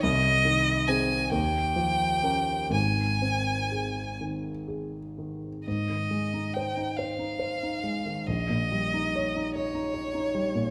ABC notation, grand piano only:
X:1
M:6/8
L:1/16
Q:3/8=46
K:Ab
V:1 name="Grand piano"
C,,2 E,2 [CA]2 E,,2 F,2 [DB]2 | [A,,,A,,]2 C2 A2 E,2 A2 E,2 | A,, E, A, E c E c E c E A, E, | B,,, B,, G, E d E d E d E G, B,, |]